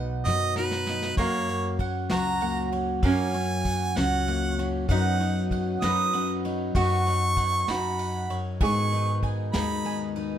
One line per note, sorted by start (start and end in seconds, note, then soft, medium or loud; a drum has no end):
0.00 0.24 B1 loud
0.00 1.19 B2 medium
0.00 0.26 F#3 medium
0.00 0.26 B3 medium
0.00 1.18 B3 medium
0.00 0.55 D#4 medium
0.00 0.88 D#4 medium
0.00 0.57 F#4 medium
0.00 0.24 B4 medium
0.00 1.18 F#5 medium
0.25 1.15 F#2 medium
0.25 1.15 F#3 medium
0.25 1.16 B3 medium
0.25 0.86 B4 medium
0.25 0.54 D#5 loud
0.25 snare medium
0.55 1.24 D#4 medium
0.55 3.05 F#4 medium
0.55 1.15 B4 loud
0.55 snare medium
0.71 snare medium
0.87 1.16 D#4 medium
0.87 1.24 B4 medium
0.87 snare medium
1.02 snare medium
1.17 2.07 F#2 loud
1.17 3.02 F#2 medium
1.17 3.02 A#3 medium
1.17 1.77 A#3 loud
1.17 1.76 C#5 loud
1.17 1.80 F#5 medium
1.17 kick medium
1.17 crash medium
1.49 2.72 C#4 medium
1.49 2.72 C#5 medium
1.49 ride medium
1.79 2.42 F#5 medium
1.79 kick medium
1.79 ride medium
2.09 3.00 C#2 medium
2.09 3.96 F#3 medium
2.09 2.69 F#4 medium
2.09 3.97 F#4 medium
2.09 2.70 A#5 loud
2.09 snare medium
2.09 ride medium
2.40 3.00 A#3 medium
2.40 3.04 F#5 medium
2.40 ride medium
2.72 3.34 C#4 medium
2.72 3.34 C#5 medium
2.72 ride soft
3.02 4.88 F#2 medium
3.02 3.92 F#2 loud
3.02 4.90 A#3 medium
3.02 3.94 C#4 medium
3.02 3.65 F#5 medium
3.02 3.98 G#5 loud
3.02 kick medium
3.02 ride medium
3.34 4.57 C#4 medium
3.34 4.59 C#5 medium
3.34 ride medium
3.65 4.28 F#5 medium
3.65 kick medium
3.65 ride soft
3.96 4.86 C#2 medium
3.96 4.88 F#3 medium
3.96 4.67 C#4 medium
3.96 5.83 F#4 medium
3.96 4.67 F#5 loud
3.96 snare medium
3.96 ride medium
4.27 4.86 A#3 medium
4.27 4.91 F#5 medium
4.27 ride soft
4.58 4.90 C#4 medium
4.58 5.20 C#5 medium
4.58 ride soft
4.88 6.74 F#2 medium
4.88 5.78 F#2 loud
4.88 5.82 F#3 medium
4.88 6.76 B3 medium
4.88 6.13 C#4 medium
4.88 5.20 D#4 medium
4.88 5.48 D#4 medium
4.88 8.62 F#4 medium
4.88 5.47 F#5 medium
4.88 5.51 F#5 medium
4.88 kick medium
4.88 ride medium
5.20 6.45 D#4 medium
5.20 6.44 C#5 medium
5.20 ride soft
5.51 6.13 F#5 medium
5.51 kick medium
5.51 ride soft
5.81 6.71 F#2 medium
5.81 6.72 F#3 medium
5.81 7.69 D#4 medium
5.81 6.41 B4 medium
5.81 6.40 D#6 loud
5.81 snare medium
5.81 ride medium
6.13 6.72 C#4 medium
6.13 6.75 F#5 medium
6.13 ride medium
6.44 7.08 D#4 medium
6.44 7.05 C#5 medium
6.44 ride medium
6.75 7.64 F#2 loud
6.75 8.28 F#2 medium
6.75 7.68 B3 medium
6.75 7.65 F#4 loud
6.75 7.36 F#5 medium
6.75 7.72 C#6 loud
6.75 kick medium
6.75 ride medium
7.06 8.93 D#4 medium
7.06 8.29 C#5 medium
7.06 ride medium
7.37 7.98 F#5 medium
7.37 kick medium
7.37 ride medium
7.68 8.57 F#2 medium
7.68 8.60 D#4 medium
7.68 8.39 F#4 medium
7.68 8.39 B5 medium
7.68 snare medium
7.68 ride medium
7.99 8.61 F#5 medium
7.99 ride medium
8.30 8.61 F#2 medium
8.30 8.67 C#5 medium
8.30 ride soft
8.61 9.50 G#2 loud
8.61 10.38 G#2 medium
8.61 10.38 B2 medium
8.61 10.38 D#3 medium
8.61 10.38 G#3 medium
8.61 10.38 B3 medium
8.61 10.38 D#4 medium
8.61 9.20 G#4 medium
8.61 9.22 G#5 medium
8.61 9.20 C#6 loud
8.61 kick medium
8.61 ride medium
8.92 10.16 D#4 medium
8.92 10.15 B4 medium
8.92 ride soft
9.23 9.85 G#5 medium
9.23 kick medium
9.23 ride soft
9.53 10.38 D#2 medium
9.53 10.38 G#3 medium
9.53 10.38 D#4 medium
9.53 10.12 G#4 medium
9.53 10.11 B5 loud
9.53 snare medium
9.53 ride medium
9.85 10.38 B3 medium
9.85 10.38 G#5 medium
9.85 ride soft
10.15 10.38 D#4 medium
10.15 10.38 B4 medium
10.15 ride soft